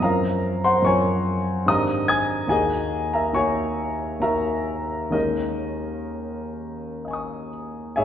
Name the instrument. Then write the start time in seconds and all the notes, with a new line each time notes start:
grand piano
0.00 F#2 F3 C4 C#4 F5 A#5
0.04 A#4
0.64 C5 F#5 C6
0.82 F#2 F3 C4 C#4 A#4 C#5 C#6
0.86 G#5
1.66 G#2 D#3 C4 D4 G4 D#5 A#5 D#6
2.08 G#5 D#6 G#6
2.47 D#2 D#3 A#3 D#4 F#4 G#4 D#5 G#5
3.13 A#4 E5 A#5
3.33 D#2 D#3 A#3 D#4 F#4 C#5 G#5 C#6
4.20 D#2 D#3 A#3 D#4 F#4 A#4 E5 A#5
5.10 D#2 D#3 G#3 C#4 D#4 A#4 D#5
7.05 D#5 G#5
7.11 C#6 D#6
7.96 G#2 G#4 C#5 E5 G#5